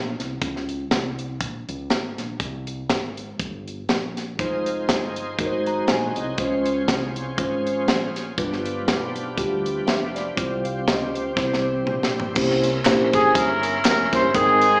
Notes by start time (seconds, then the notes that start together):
Already playing: A#1
0.19 C2, snare, closed hi-hat
0.41 C#2, kick, closed hi-hat
0.56 snare
0.69 closed hi-hat
0.91 C2, kick, snare, closed hi-hat
1.19 closed hi-hat
1.41 A#1, kick, closed hi-hat
1.69 C#2, closed hi-hat
1.90 G#1, snare, closed hi-hat
2.18 A#1, snare, closed hi-hat
2.40 C2, kick, closed hi-hat
2.67 closed hi-hat
2.90 G#1, kick, snare, closed hi-hat
3.17 closed hi-hat
3.40 G1, kick, closed hi-hat
3.68 closed hi-hat
3.89 A#1, snare, closed hi-hat
4.17 snare, closed hi-hat
4.39 F1 F3 G#3 D#4 F4 G#4 C5, kick, closed hi-hat
4.66 closed hi-hat
4.89 G1, kick, snare, closed hi-hat
5.16 closed hi-hat
5.39 G#1 G#2 F#3 G#3 D#4 F#4 G#4 A#4, kick, closed hi-hat
5.46 C5
5.66 A#5, closed hi-hat
5.88 A#1 G#5, snare, closed hi-hat
6.16 C2 D#5, closed hi-hat
6.38 C#2 C#3 F3 G#3 C#4 F4 C5, kick, closed hi-hat
6.66 closed hi-hat
6.88 C2, kick, snare, closed hi-hat
7.16 closed hi-hat
7.37 G#1 G#3 C#4 F4 C5, kick, closed hi-hat
7.67 closed hi-hat
7.88 A#1, snare, closed hi-hat
8.16 snare, closed hi-hat
8.37 G1 G2 G3 B3 D4 F4 G4 B4, kick, closed hi-hat
8.53 snare
8.66 closed hi-hat
8.88 B1, kick, snare, closed hi-hat
9.16 closed hi-hat
9.37 D2 G3 D4 F4 G4, kick, closed hi-hat
9.66 closed hi-hat
9.87 F1 E5, snare, closed hi-hat
10.15 D5, snare, closed hi-hat
10.36 C2 C3 G3 C4 F4 C5, kick, closed hi-hat
10.65 F5, closed hi-hat
10.88 C#2 D#5, kick, snare, closed hi-hat
11.15 C5, closed hi-hat
11.36 C2 C3 E3 G3 C4 E4 C5, kick, snare
11.54 snare
11.86 A#1, mid tom
12.03 snare
12.20 floor tom
12.35 C2 C3 A#3 C#4 E4 G4 A#4 C5 E5 C6, kick, crash, tambourine
12.51 snare
12.63 closed hi-hat, tambourine
12.85 A#1 A#3 C#4 E4 G4 C5, kick, snare, clap, closed hi-hat, tambourine
13.13 G#4, kick, closed hi-hat, tambourine
13.35 G1 C#4 E4 A#4, kick, closed hi-hat, tambourine
13.63 closed hi-hat, tambourine
13.85 F1 A#4, snare, clap, closed hi-hat, tambourine
14.12 G1 A#3 C#4 E4 G4 C5, kick, snare, closed hi-hat, tambourine
14.34 G#1 G#2 G#3 C4 D#4 G#4 A#4 C5 G5 A#5, kick, closed hi-hat, tambourine
14.62 closed hi-hat, tambourine